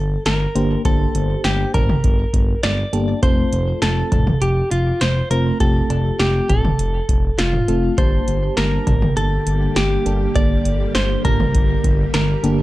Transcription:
0.00 0.17 G1 medium
0.00 0.26 A4 loud
0.26 0.47 G1 loud
0.26 0.81 A#4 loud
0.26 snare loud
0.26 closed hi-hat medium
0.55 0.76 G1 loud
0.55 0.82 A#3 medium
0.55 0.82 D4 medium
0.55 0.82 G4 medium
0.55 0.82 C5 medium
0.55 closed hi-hat medium
0.85 1.06 G1 loud
0.85 1.90 A#3 medium
0.85 1.90 D4 medium
0.85 1.90 G4 medium
0.85 1.44 A4 loud
0.85 1.90 C5 medium
0.85 kick loud
0.85 closed hi-hat medium
1.15 1.36 G1 loud
1.15 closed hi-hat medium
1.44 1.65 G1 loud
1.44 1.74 G4 loud
1.44 snare loud
1.44 closed hi-hat medium
1.74 1.95 G1 loud
1.74 2.63 A#4 loud
1.74 kick medium
1.74 closed hi-hat medium
1.74 mid tom loud
1.74 cowbell medium
1.89 mid tom loud
2.04 2.25 G1 loud
2.04 kick loud
2.04 closed hi-hat medium
2.34 2.54 G1 loud
2.34 kick medium
2.34 closed hi-hat medium
2.63 2.84 G1 medium
2.63 3.22 D5 loud
2.63 snare loud
2.63 closed hi-hat medium
2.93 3.14 G1 loud
2.93 3.19 A#3 medium
2.93 3.19 D4 medium
2.93 3.19 G4 medium
2.93 3.19 A4 medium
2.93 closed hi-hat medium
3.23 3.44 F1 loud
3.23 4.27 A3 medium
3.23 4.27 C4 medium
3.23 4.27 F4 medium
3.23 4.27 A4 medium
3.23 3.82 C5 loud
3.23 kick loud
3.23 closed hi-hat medium
3.52 3.73 F1 loud
3.52 closed hi-hat medium
3.82 4.03 F1 loud
3.82 4.43 A4 loud
3.82 snare loud
3.82 closed hi-hat medium
4.12 4.33 F1 loud
4.12 kick medium
4.12 closed hi-hat medium
4.12 mid tom loud
4.12 cowbell medium
4.27 mid tom loud
4.42 4.62 F1 loud
4.42 4.71 G4 loud
4.42 closed hi-hat medium
4.71 4.92 F1 loud
4.71 5.02 F4 medium
4.71 closed hi-hat medium
5.01 5.22 F1 loud
5.01 5.30 C5 loud
5.01 snare loud
5.01 closed hi-hat medium
5.31 5.51 F1 loud
5.31 5.57 A3 medium
5.31 5.57 C4 medium
5.31 5.57 F4 medium
5.31 5.60 A#4 loud
5.31 5.57 C5 medium
5.31 closed hi-hat medium
5.60 5.81 F1 loud
5.60 6.65 A3 medium
5.60 6.65 C4 medium
5.60 6.65 F4 medium
5.60 6.65 G4 medium
5.60 6.22 A4 loud
5.60 kick loud
5.60 closed hi-hat medium
5.90 6.11 F1 loud
5.90 closed hi-hat medium
5.90 cowbell medium
6.19 6.41 F1 loud
6.19 6.50 G4 loud
6.19 snare loud
6.19 closed hi-hat medium
6.49 6.70 F1 loud
6.49 7.41 A4 loud
6.49 kick medium
6.49 closed hi-hat medium
6.49 mid tom loud
6.65 mid tom loud
6.79 7.00 F1 loud
6.79 closed hi-hat medium
7.09 7.30 F1 loud
7.09 kick medium
7.09 closed hi-hat medium
7.39 7.59 F1 loud
7.39 8.00 F4 medium
7.39 snare loud
7.39 closed hi-hat medium
7.53 mid tom medium
7.68 7.89 F1 loud
7.68 7.95 A3 medium
7.68 7.95 C4 medium
7.68 7.95 F4 medium
7.68 7.95 A4 medium
7.68 closed hi-hat medium
7.98 8.19 G1 loud
7.98 12.62 D3 medium
7.98 12.62 G3 medium
7.98 12.62 A#3 medium
7.98 9.03 A#3 medium
7.98 9.03 D4 medium
7.98 12.62 G4 medium
7.98 9.03 G4 medium
7.98 8.57 C5 loud
7.98 9.03 A5 medium
7.98 kick loud
7.98 closed hi-hat medium
8.28 8.49 G1 loud
8.28 closed hi-hat medium
8.57 8.78 G1 loud
8.57 9.16 A#4 loud
8.57 snare loud
8.57 closed hi-hat medium
8.87 9.08 G1 loud
8.87 kick medium
8.87 closed hi-hat medium
8.87 mid tom loud
8.87 cowbell medium
9.02 mid tom loud
9.17 9.38 G1 loud
9.17 9.78 A4 medium
9.17 closed hi-hat medium
9.47 9.67 G1 medium
9.47 closed hi-hat medium
9.76 9.97 G1 loud
9.76 10.37 G4 medium
9.76 snare loud
9.76 closed hi-hat medium
10.06 10.27 G1 loud
10.06 10.32 A#3 medium
10.06 10.32 D4 medium
10.06 10.32 G4 medium
10.06 10.32 A4 medium
10.06 closed hi-hat medium
10.36 10.56 G1 loud
10.36 11.40 A#3 medium
10.36 11.40 D4 medium
10.36 11.40 G4 medium
10.36 11.40 A4 medium
10.36 10.95 D5 loud
10.36 kick loud
10.36 closed hi-hat medium
10.65 10.86 G1 loud
10.65 closed hi-hat medium
10.95 11.16 G1 loud
10.95 11.24 C5 loud
10.95 snare loud
10.95 closed hi-hat medium
11.25 11.46 G1 loud
11.25 12.13 A#4 loud
11.25 kick medium
11.25 closed hi-hat medium
11.25 mid tom loud
11.25 cowbell medium
11.40 mid tom loud
11.55 11.75 G1 loud
11.55 kick loud
11.55 closed hi-hat medium
11.84 12.05 G1 loud
11.84 kick medium
11.84 closed hi-hat medium
12.14 12.35 G1 loud
12.14 12.62 A#4 loud
12.14 snare loud
12.14 closed hi-hat medium
12.43 12.62 G1 loud
12.43 12.62 A#3 medium
12.43 12.62 D4 medium
12.43 12.62 G4 medium
12.43 12.62 A4 medium
12.43 closed hi-hat medium

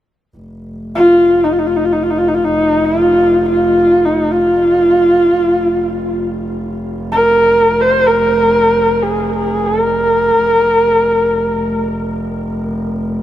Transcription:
0.37 5.41 F1 medium
0.95 1.45 F4 medium
1.44 1.54 D#4 medium
1.53 1.60 F4 medium
1.59 1.68 D#4 medium
1.67 1.78 F4 medium
1.76 1.86 D#4 medium
1.85 1.94 F4 medium
1.93 2.04 D#4 medium
2.03 2.12 F4 medium
2.10 2.20 D#4 medium
2.19 2.30 F4 medium
2.28 2.36 D#4 medium
2.34 2.46 F4 medium
2.44 2.86 D#4 medium
2.85 3.48 F4 medium
3.49 4.07 F4 medium
4.05 4.34 D#4 medium
4.32 6.16 F4 medium
5.42 10.44 F1 medium
7.12 7.83 A#4 medium
7.81 8.08 C5 medium
8.06 9.04 A#4 medium
9.03 9.36 G#4 medium
9.36 9.67 G#4 medium
9.66 11.91 A#4 medium
10.44 13.22 F1 medium

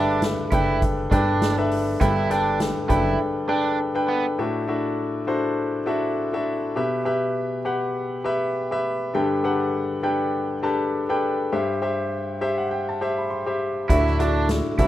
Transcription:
0.00 0.36 G1 loud
0.00 0.49 G2 medium
0.00 0.49 D3 medium
0.00 0.21 D4 medium
0.00 0.52 D4 medium
0.00 0.53 A4 medium
0.00 0.53 B4 medium
0.00 0.45 E5 loud
0.00 0.54 G5 loud
0.22 snare loud
0.22 closed hi-hat medium
0.51 1.08 F#1 medium
0.51 1.04 D4 medium
0.51 0.80 E4 medium
0.51 1.04 A4 medium
0.51 1.05 B4 medium
0.51 1.05 G5 medium
0.51 kick loud
0.51 closed hi-hat medium
0.82 kick medium
0.82 closed hi-hat medium
1.11 1.97 G1 loud
1.11 1.55 D4 medium
1.11 1.51 D4 medium
1.11 1.51 A4 medium
1.11 1.51 B4 medium
1.11 1.51 G5 loud
1.11 kick loud
1.11 closed hi-hat medium
1.42 snare loud
1.42 closed hi-hat medium
1.58 1.95 D4 medium
1.58 1.95 A4 medium
1.58 1.95 B4 medium
1.58 1.95 E5 loud
1.71 open hi-hat medium
2.00 2.73 G1 loud
2.00 2.86 G2 medium
2.00 2.86 D3 medium
2.00 2.27 D4 medium
2.00 2.29 E4 medium
2.00 2.27 A4 medium
2.00 2.27 B4 medium
2.00 2.27 G5 medium
2.00 kick loud
2.00 closed hi-hat medium
2.30 2.82 D4 medium
2.30 2.59 D4 medium
2.30 2.82 A4 medium
2.30 2.83 B4 medium
2.30 2.83 G5 medium
2.30 closed hi-hat medium
2.60 snare loud
2.60 closed hi-hat medium
2.89 3.18 F#1 loud
2.89 3.41 D4 medium
2.89 3.18 E4 medium
2.89 3.41 A4 medium
2.89 3.42 B4 medium
2.89 3.42 G5 medium
2.89 kick loud
2.89 closed hi-hat medium
3.48 3.88 D4 medium
3.48 3.77 D4 medium
3.48 3.88 A4 medium
3.48 3.88 B4 medium
3.48 3.88 G5 medium
3.95 4.32 D4 medium
3.95 4.32 A4 medium
3.95 4.33 B4 medium
3.95 4.33 G5 loud
4.08 4.24 B3 medium
4.38 5.24 A2 medium
4.38 4.64 D4 medium
4.38 4.65 E4 medium
4.38 4.65 F#4 medium
4.38 4.65 A4 medium
4.38 4.65 E5 medium
4.68 5.20 D4 medium
4.68 5.20 E4 medium
4.68 5.20 F#4 medium
4.68 5.20 A4 medium
4.68 5.20 E5 medium
5.27 5.79 D4 medium
5.27 5.79 E4 medium
5.27 5.79 F#4 medium
5.27 5.80 A4 medium
5.27 5.80 C5 medium
5.86 6.26 D4 medium
5.86 6.26 E4 medium
5.86 6.26 F#4 medium
5.86 6.26 A4 medium
5.86 6.26 E5 medium
6.33 6.70 D4 medium
6.33 6.70 E4 medium
6.33 6.71 F#4 medium
6.33 6.71 A4 medium
6.33 6.71 E5 medium
6.76 7.61 B2 medium
6.76 7.02 G4 medium
6.76 7.02 B4 medium
6.76 7.02 E5 medium
7.05 7.57 G4 medium
7.05 7.58 B4 medium
7.05 7.58 E5 medium
7.65 8.17 G4 medium
7.65 8.17 B4 medium
7.65 8.17 F#5 medium
8.24 8.64 G4 medium
8.24 8.64 B4 medium
8.24 8.64 E5 loud
8.71 9.08 G4 medium
8.71 9.08 B4 medium
8.71 9.09 E5 loud
9.14 9.99 G2 medium
9.14 9.99 D3 medium
9.14 9.40 D4 medium
9.14 9.40 G4 medium
9.14 9.40 A4 medium
9.14 9.40 B4 medium
9.14 9.40 G5 medium
9.44 9.96 D4 medium
9.44 9.96 G4 medium
9.44 9.96 A4 medium
9.44 9.96 B4 medium
9.44 9.96 F#5 medium
10.03 10.55 D4 medium
10.03 10.55 G4 medium
10.03 10.55 A4 medium
10.03 10.55 B4 medium
10.03 10.55 G5 loud
10.63 11.02 D4 medium
10.63 11.02 G4 medium
10.63 11.02 A4 medium
10.63 11.02 B4 medium
10.63 11.02 A5 medium
11.09 11.46 D4 medium
11.09 11.46 G4 medium
11.09 11.46 A4 medium
11.09 11.46 B4 medium
11.09 11.46 G5 loud
11.52 12.37 G2 medium
11.52 11.78 G4 medium
11.52 11.78 C5 medium
11.52 11.78 E5 medium
11.82 12.33 G4 medium
11.82 12.33 C5 medium
11.82 12.34 E5 medium
12.41 12.93 G4 medium
12.41 12.93 C5 medium
12.41 12.93 E5 loud
12.58 12.70 F#5 medium
12.71 12.86 G5 medium
12.89 13.16 A5 medium
13.01 13.40 G4 medium
13.01 13.40 C5 medium
13.01 13.40 E5 loud
13.18 13.30 B5 medium
13.30 13.85 C6 medium
13.46 13.84 G4 medium
13.46 13.84 C5 medium
13.46 13.84 E5 medium
13.89 14.62 D2 loud
13.89 14.74 A2 medium
13.89 14.15 D4 medium
13.89 14.18 E4 loud
13.89 14.15 E4 medium
13.89 14.15 F#4 medium
13.89 14.16 A4 medium
13.89 14.15 E5 medium
13.89 kick loud
13.89 closed hi-hat medium
14.07 snare soft
14.19 14.47 D4 medium
14.19 14.71 D4 medium
14.19 14.71 E4 medium
14.19 14.71 F#4 medium
14.19 14.71 A4 medium
14.19 14.72 E5 medium
14.19 closed hi-hat medium
14.49 snare loud
14.49 closed hi-hat loud
14.79 14.88 C2 medium
14.79 14.88 D4 medium
14.79 14.88 E4 medium
14.79 14.88 F#4 medium
14.79 14.88 A4 medium
14.79 14.88 E5 medium
14.79 kick medium
14.79 closed hi-hat medium

